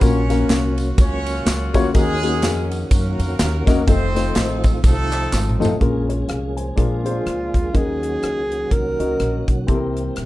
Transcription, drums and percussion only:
0.01 kick loud
0.01 ride medium
0.01 tambourine medium
0.30 snare soft
0.30 ride medium
0.30 tambourine medium
0.49 snare loud
0.49 clap medium
0.49 ride medium
0.49 tambourine medium
0.78 ride medium
0.78 tambourine medium
0.98 kick loud
0.98 ride medium
0.98 tambourine medium
1.26 ride medium
1.26 tambourine medium
1.46 snare loud
1.46 clap loud
1.46 ride medium
1.46 tambourine loud
1.74 kick loud
1.74 ride medium
1.74 tambourine medium
1.94 kick loud
1.94 ride medium
1.94 tambourine medium
2.23 ride medium
2.23 tambourine medium
2.42 snare loud
2.42 clap medium
2.42 ride medium
2.42 tambourine medium
2.71 ride medium
2.71 tambourine medium
2.91 kick loud
2.91 ride medium
2.91 tambourine medium
3.20 ride medium
3.20 tambourine medium
3.39 snare loud
3.39 clap loud
3.39 ride medium
3.39 tambourine loud
3.67 kick loud
3.67 snare soft
3.67 ride medium
3.67 tambourine medium
3.88 kick loud
3.88 ride medium
3.88 tambourine medium
4.16 snare soft
4.16 ride medium
4.16 tambourine medium
4.35 snare loud
4.35 clap medium
4.35 ride medium
4.35 tambourine medium
4.64 kick loud
4.64 ride medium
4.64 tambourine medium
4.84 kick loud
4.84 ride medium
4.84 tambourine medium
5.12 clap medium
5.12 ride medium
5.12 tambourine soft
5.33 snare medium
5.33 clap loud
5.33 tambourine loud
5.49 mid tom medium
5.62 floor tom loud
5.62 tambourine medium
5.81 kick medium
5.81 closed hi-hat medium
6.10 cross-stick soft
6.10 closed hi-hat medium
6.29 cross-stick medium
6.29 closed hi-hat medium
6.57 closed hi-hat medium
6.78 kick loud
6.78 closed hi-hat medium
7.06 closed hi-hat medium
7.26 cross-stick medium
7.26 closed hi-hat medium
7.54 kick medium
7.54 cross-stick soft
7.54 closed hi-hat medium
7.75 kick medium
7.75 closed hi-hat medium
8.03 cross-stick soft
8.03 closed hi-hat medium
8.23 cross-stick loud
8.23 closed hi-hat medium
8.52 closed hi-hat medium
8.71 kick medium
8.71 closed hi-hat medium
9.00 closed hi-hat medium
9.20 cross-stick medium
9.20 closed hi-hat medium
9.48 kick medium
9.48 closed hi-hat medium
9.68 kick medium
9.68 closed hi-hat medium
9.97 cross-stick soft
9.97 closed hi-hat medium
10.16 cross-stick medium
10.16 closed hi-hat medium

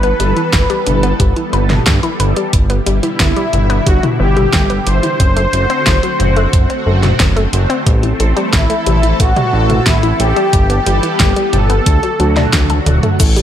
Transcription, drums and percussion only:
0.03 closed hi-hat soft
0.20 closed hi-hat medium
0.37 closed hi-hat soft
0.53 kick loud
0.53 snare loud
0.53 closed hi-hat medium
0.70 closed hi-hat soft
0.87 closed hi-hat medium
0.87 mid tom medium
1.03 closed hi-hat soft
1.20 kick loud
1.20 closed hi-hat medium
1.36 closed hi-hat soft
1.53 closed hi-hat soft
1.70 snare soft
1.70 closed hi-hat soft
1.70 mid tom medium
1.86 kick loud
1.86 snare loud
1.86 closed hi-hat medium
2.03 closed hi-hat soft
2.20 closed hi-hat medium
2.36 closed hi-hat soft
2.53 kick loud
2.53 closed hi-hat medium
2.70 closed hi-hat soft
2.86 closed hi-hat medium
3.03 closed hi-hat soft
3.20 kick loud
3.20 snare loud
3.20 closed hi-hat medium
3.37 closed hi-hat soft
3.53 closed hi-hat medium
3.53 mid tom medium
3.70 closed hi-hat soft
3.87 kick loud
3.87 closed hi-hat medium
4.03 closed hi-hat soft
4.03 mid tom medium
4.37 closed hi-hat soft
4.37 mid tom medium
4.53 kick loud
4.53 snare loud
4.53 closed hi-hat medium
4.70 closed hi-hat soft
4.87 closed hi-hat medium
5.03 closed hi-hat soft
5.20 kick loud
5.20 closed hi-hat medium
5.37 closed hi-hat soft
5.53 closed hi-hat medium
5.70 closed hi-hat soft
5.86 kick loud
5.86 snare loud
5.86 closed hi-hat medium
6.03 closed hi-hat soft
6.20 closed hi-hat medium
6.20 mid tom medium
6.37 closed hi-hat soft
6.53 kick loud
6.53 closed hi-hat medium
6.70 closed hi-hat soft
7.03 snare soft
7.03 closed hi-hat soft
7.03 mid tom medium
7.20 kick loud
7.20 snare loud
7.20 closed hi-hat medium
7.37 closed hi-hat soft
7.53 closed hi-hat medium
7.70 closed hi-hat soft
7.87 kick loud
7.87 closed hi-hat medium
8.03 closed hi-hat soft
8.20 closed hi-hat medium
8.37 closed hi-hat soft
8.53 kick loud
8.53 snare loud
8.53 closed hi-hat medium
8.70 closed hi-hat soft
8.86 closed hi-hat medium
8.86 mid tom medium
9.03 closed hi-hat soft
9.20 kick loud
9.20 closed hi-hat medium
9.37 closed hi-hat soft
9.37 mid tom medium
9.70 closed hi-hat soft
9.70 mid tom medium
9.86 kick loud
9.86 snare loud
9.86 closed hi-hat medium
10.03 closed hi-hat soft
10.20 closed hi-hat medium
10.36 closed hi-hat soft
10.53 kick loud
10.53 closed hi-hat medium
10.70 closed hi-hat soft
10.86 closed hi-hat medium
11.03 closed hi-hat soft
11.20 kick loud
11.20 snare loud
11.20 closed hi-hat medium
11.36 closed hi-hat soft
11.53 closed hi-hat medium
11.53 mid tom medium
11.70 closed hi-hat soft
11.86 kick loud
11.86 closed hi-hat medium
12.03 closed hi-hat soft
12.20 closed hi-hat soft
12.36 snare soft
12.36 closed hi-hat soft
12.36 mid tom medium
12.53 kick loud
12.53 snare loud
12.53 closed hi-hat medium
12.70 closed hi-hat soft
12.70 high tom medium
12.86 closed hi-hat medium
12.86 mid tom medium
13.03 closed hi-hat soft
13.03 mid tom medium
13.20 kick loud
13.20 closed hi-hat loud
13.20 crash loud
13.20 shaker soft
13.36 closed hi-hat soft
13.36 shaker soft

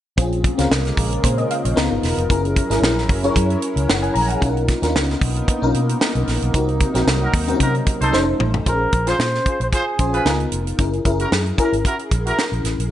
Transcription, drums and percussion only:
0.18 kick loud
0.18 closed hi-hat medium
0.32 closed hi-hat soft
0.44 kick medium
0.44 closed hi-hat medium
0.59 snare soft
0.59 closed hi-hat medium
0.72 snare loud
0.85 snare soft
0.85 closed hi-hat soft
0.97 kick medium
0.97 open hi-hat medium
1.13 closed hi-hat soft
1.24 kick medium
1.24 closed hi-hat medium
1.38 closed hi-hat soft
1.50 closed hi-hat medium
1.65 closed hi-hat medium
1.77 snare loud
2.03 snare soft
2.03 open hi-hat medium
2.18 closed hi-hat medium
2.30 kick loud
2.30 closed hi-hat medium
2.45 closed hi-hat soft
2.56 kick medium
2.56 closed hi-hat medium
2.71 snare soft
2.71 closed hi-hat medium
2.84 snare loud
2.98 snare soft
3.09 kick medium
3.09 open hi-hat medium
3.24 closed hi-hat soft
3.36 kick medium
3.36 closed hi-hat medium
3.50 closed hi-hat soft
3.62 closed hi-hat medium
3.77 closed hi-hat medium
3.90 snare loud
4.03 closed hi-hat soft
4.15 open hi-hat medium
4.30 closed hi-hat medium
4.42 kick loud
4.42 closed hi-hat medium
4.57 closed hi-hat soft
4.68 kick medium
4.68 snare soft
4.68 closed hi-hat medium
4.83 snare soft
4.83 closed hi-hat medium
4.96 snare loud
5.09 snare soft
5.09 closed hi-hat soft
5.21 kick loud
5.21 open hi-hat medium
5.36 closed hi-hat soft
5.48 kick medium
5.48 closed hi-hat medium
5.74 closed hi-hat medium
5.89 closed hi-hat medium
6.01 snare loud
6.15 closed hi-hat soft
6.27 snare soft
6.27 open hi-hat medium
6.42 closed hi-hat medium
6.54 kick loud
6.54 closed hi-hat medium
6.68 closed hi-hat soft
6.80 kick medium
6.80 closed hi-hat medium
6.95 snare soft
6.95 closed hi-hat medium
7.08 snare loud
7.34 kick loud
7.34 open hi-hat medium
7.48 closed hi-hat soft
7.60 kick loud
7.60 closed hi-hat medium
7.75 closed hi-hat soft
7.86 kick medium
7.86 closed hi-hat medium
8.01 closed hi-hat medium
8.14 snare medium
8.40 mid tom medium
8.54 floor tom medium
8.66 kick medium
8.66 closed hi-hat medium
8.92 kick medium
8.92 closed hi-hat medium
9.07 snare soft
9.07 closed hi-hat medium
9.20 snare loud
9.35 snare soft
9.46 kick medium
9.46 closed hi-hat medium
9.61 closed hi-hat soft
9.73 kick medium
9.73 closed hi-hat medium
9.99 kick medium
9.99 closed hi-hat medium
10.14 closed hi-hat soft
10.26 snare loud
10.40 closed hi-hat soft
10.52 closed hi-hat medium
10.67 closed hi-hat medium
10.79 kick medium
10.79 closed hi-hat medium
10.93 closed hi-hat soft
11.05 kick medium
11.05 closed hi-hat medium
11.19 closed hi-hat medium
11.32 snare loud
11.46 closed hi-hat soft
11.58 kick medium
11.58 closed hi-hat medium
11.73 closed hi-hat soft
11.85 kick medium
11.85 closed hi-hat medium
11.99 closed hi-hat soft
12.11 kick medium
12.11 closed hi-hat medium
12.26 closed hi-hat medium
12.39 snare loud
12.53 closed hi-hat soft
12.65 snare soft
12.65 closed hi-hat medium
12.80 closed hi-hat medium

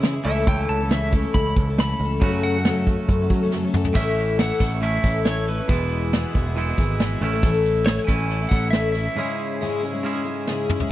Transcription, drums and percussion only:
0.03 snare loud
0.03 open hi-hat medium
0.03 shaker medium
0.27 shaker medium
0.47 kick loud
0.47 open hi-hat medium
0.47 shaker medium
0.69 shaker medium
0.91 snare loud
0.91 open hi-hat medium
0.91 shaker loud
1.13 kick medium
1.13 shaker medium
1.34 kick medium
1.34 open hi-hat medium
1.34 shaker medium
1.56 kick medium
1.56 shaker medium
1.78 snare loud
1.78 open hi-hat medium
1.78 shaker medium
1.99 shaker medium
2.21 kick loud
2.21 open hi-hat medium
2.21 shaker medium
2.44 shaker medium
2.65 snare loud
2.65 shaker loud
2.87 kick medium
2.87 shaker medium
3.08 kick medium
3.08 open hi-hat medium
3.08 shaker loud
3.30 kick medium
3.30 shaker medium
3.51 snare medium
3.51 shaker medium
3.74 mid tom medium
3.74 shaker medium
3.84 floor tom medium
3.95 kick medium
3.95 crash loud
4.17 ride medium
4.39 snare loud
4.39 ride medium
4.60 kick medium
4.60 ride medium
4.82 ride medium
5.03 kick medium
5.03 ride medium
5.25 snare loud
5.25 ride medium
5.47 ride medium
5.69 kick loud
5.69 ride medium
5.91 ride medium
6.13 snare loud
6.13 ride medium
6.35 kick medium
6.35 ride medium
6.57 ride medium
6.78 kick medium
6.78 ride medium
7.00 snare loud
7.00 ride medium
7.22 ride medium
7.43 kick loud
7.43 ride medium
7.43 shaker medium
7.65 ride medium
7.65 shaker medium
7.86 snare loud
7.86 ride loud
7.86 shaker medium
8.08 kick medium
8.08 ride medium
8.08 shaker medium
8.30 ride medium
8.30 shaker medium
8.51 kick medium
8.51 ride medium
8.51 shaker loud
8.73 snare loud
8.73 ride medium
8.73 shaker medium
8.94 ride medium
8.94 shaker loud
10.47 snare medium
10.69 mid tom medium
10.80 floor tom medium

